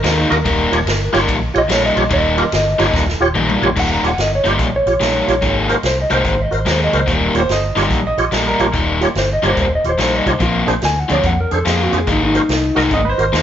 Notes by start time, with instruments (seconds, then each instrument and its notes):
0.03 fingered electric bass D#2, overdriven electric guitar D#3 G#3 A#3 D#4, clean electric guitar A#4, snare, ride
0.19 clean electric guitar D#4
0.30 fingered electric bass D#2, tonewheel organ F#4 A#4 D#5, clean electric guitar A#4, ride
0.45 fingered electric bass D#1, overdriven electric guitar D#3 G3 A#3 D#4, clean electric guitar A#4, kick, ride
0.71 fingered electric bass D#1, tonewheel organ F4 G4 C#5, ride
0.86 fingered electric bass G1, snare, ride
1.12 fingered electric bass G1, overdriven electric guitar D#3 G3 A#3 D#4, tonewheel organ F4 G4 C#5, snare, ride
1.28 fingered electric bass A#1, kick, ride
1.54 fingered electric bass A#1, tonewheel organ F4 G4 C#5, ride
1.58 clean electric guitar D#5
1.68 fingered electric bass A#1, overdriven electric guitar D#3 G3 A#3 D#4, clean electric guitar C#5, snare, ride
1.86 clean electric guitar D#5
1.95 fingered electric bass A#1, tonewheel organ F4 G4 C#5, ride
2.10 fingered electric bass D#1, overdriven electric guitar D#3 G3 A#3 D#4, clean electric guitar D#5, kick, ride
2.37 tonewheel organ F4 G4 A#4, ride
2.52 fingered electric bass G1, snare, ride
2.79 fingered electric bass G1, overdriven electric guitar D#3 G3 A#3 D#4, tonewheel organ F4 G4 C#5, snare, ride
2.94 fingered electric bass D#1, kick, snare
3.08 snare
3.20 fingered electric bass D#1, tonewheel organ F4 G4 C#5
3.35 fingered electric bass A#1, overdriven electric guitar D#3 G3 A#3 D#4, mid tom
3.49 mid tom
3.62 fingered electric bass A#1, tonewheel organ F4 G4 C#5, floor tom
3.76 fingered electric bass D#1, overdriven electric guitar D#3 G3 A#3 D#4, clean electric guitar F#5, kick, crash
3.94 clean electric guitar A#5
4.03 fingered electric bass D#1, tonewheel organ F4 G4 C#5, closed hi-hat
4.08 clean electric guitar F#5
4.18 fingered electric bass G1, clean electric guitar D#5, snare, closed hi-hat
4.35 clean electric guitar C#5
4.44 fingered electric bass G1, overdriven electric guitar D#3 G3 A#3 D#4, tonewheel organ F4 G4 C5, closed hi-hat
4.48 clean electric guitar D#5
4.59 fingered electric bass A#1, clean electric guitar C#5, kick, closed hi-hat
4.76 clean electric guitar C#5
4.86 fingered electric bass A#1, tonewheel organ F4 G4 C#5, closed hi-hat
5.00 fingered electric bass A#1, overdriven electric guitar D#3 G3 A#3 D#4, snare, closed hi-hat
5.28 fingered electric bass A#1, tonewheel organ F4 G4 C#5, closed hi-hat
5.41 fingered electric bass G#1, overdriven electric guitar D#3 G#3 A#3 D#4, kick, closed hi-hat
5.69 tonewheel organ F#4 A#4 C5, closed hi-hat
5.83 fingered electric bass C2, clean electric guitar C5, snare, closed hi-hat
6.02 clean electric guitar D#5
6.10 fingered electric bass C2, overdriven electric guitar D#3 G#3 A#3 D#4, tonewheel organ F#4 A#4 C5, closed hi-hat
6.14 clean electric guitar C5
6.25 fingered electric bass G#1, clean electric guitar C5, kick, closed hi-hat
6.42 clean electric guitar D#5
6.51 fingered electric bass G#1, tonewheel organ F#4 A#4 C5, closed hi-hat
6.56 clean electric guitar C5
6.65 fingered electric bass D#2, overdriven electric guitar D#3 G#3 A#3 D#4, snare, closed hi-hat
6.71 clean electric guitar C5
6.84 clean electric guitar D#5
6.93 fingered electric bass C#2, tonewheel organ F#4 A#4 C5, closed hi-hat
6.98 clean electric guitar C5
7.06 fingered electric bass D#1, overdriven electric guitar D#3 G3 A#3 D#4, kick, closed hi-hat
7.12 clean electric guitar A#4
7.34 fingered electric bass D#1, tonewheel organ F4 G4 C#5, upright piano C5, closed hi-hat
7.49 fingered electric bass G1, upright piano D#5, snare, closed hi-hat
7.75 fingered electric bass G1, overdriven electric guitar D#3 G3 A#3 D#4, tonewheel organ F4 G4 C#5, snare, closed hi-hat
7.90 fingered electric bass A#1, kick, closed hi-hat
8.07 upright piano D#5
8.18 fingered electric bass A#1, tonewheel organ F4 G4 C#5, closed hi-hat
8.32 fingered electric bass A#1, overdriven electric guitar D#3 G3 A#3 D#4, snare, closed hi-hat
8.48 upright piano A#4
8.59 fingered electric bass A#1, tonewheel organ F4 G4 C#5, closed hi-hat
8.73 fingered electric bass D#1, overdriven electric guitar D#3 G3 A#3 D#4, kick, closed hi-hat
9.01 tonewheel organ F4 G4 C#5, closed hi-hat
9.15 fingered electric bass G1, clean electric guitar C5, snare, closed hi-hat
9.33 clean electric guitar D#5
9.42 fingered electric bass G1, overdriven electric guitar D#3 G3 A#3 D#4, tonewheel organ F4 G4 C#5, closed hi-hat
9.47 clean electric guitar C5
9.57 fingered electric bass D#1, kick, closed hi-hat
9.61 clean electric guitar C5
9.75 clean electric guitar D#5
9.84 fingered electric bass D#1, tonewheel organ F4 G4 C#5, closed hi-hat
9.89 clean electric guitar C5
9.98 fingered electric bass A#1, overdriven electric guitar D#3 G3 A#3 D#4, snare, closed hi-hat
10.03 clean electric guitar C5
10.15 clean electric guitar D#5
10.26 fingered electric bass C2, tonewheel organ F4 G4 C#5, clean electric guitar C5, kick, closed hi-hat
10.39 fingered electric bass A#1, overdriven electric guitar F3 A#3 C4 F4, clean electric guitar F4, kick, closed hi-hat
10.67 fingered electric bass A#1, tonewheel organ D4 G#4 C5, closed hi-hat
10.82 fingered electric bass D2, clean electric guitar G#5, snare, closed hi-hat
11.00 clean electric guitar F#5
11.08 fingered electric bass D2, overdriven electric guitar F3 A#3 C4 F4, tonewheel organ D4 G#4 D5, clean electric guitar C#5, closed hi-hat
11.23 fingered electric bass F2, clean electric guitar F#5, kick, closed hi-hat
11.40 clean electric guitar A#4
11.51 fingered electric bass F2, tonewheel organ D4 G#4 C5, clean electric guitar A4, closed hi-hat
11.65 fingered electric bass F2, overdriven electric guitar F3 A#3 C4 F4, clean electric guitar G#4, snare, closed hi-hat
11.83 clean electric guitar F#4
11.92 fingered electric bass F2, tonewheel organ D4 G#4 C5, closed hi-hat
11.97 clean electric guitar G#4
12.07 fingered electric bass G#1, overdriven electric guitar D#3 G#3 A#3 D#4, kick, closed hi-hat
12.12 clean electric guitar D#4
12.26 clean electric guitar D#4
12.34 tonewheel organ F#4 A#4 C5, closed hi-hat
12.49 fingered electric bass C2, snare, closed hi-hat
12.75 fingered electric bass C2, overdriven electric guitar D#3 G#3 A#3 D#4, tonewheel organ F#4 A#4 D#5, snare, closed hi-hat
12.91 fingered electric bass G#1, upright piano D#5, kick, closed hi-hat
13.05 upright piano B4
13.09 upright piano C5
13.18 fingered electric bass G#1, tonewheel organ F#4 A#4 C5, closed hi-hat
13.33 fingered electric bass D#2, overdriven electric guitar D#3 G#3 A#3 D#4, snare, closed hi-hat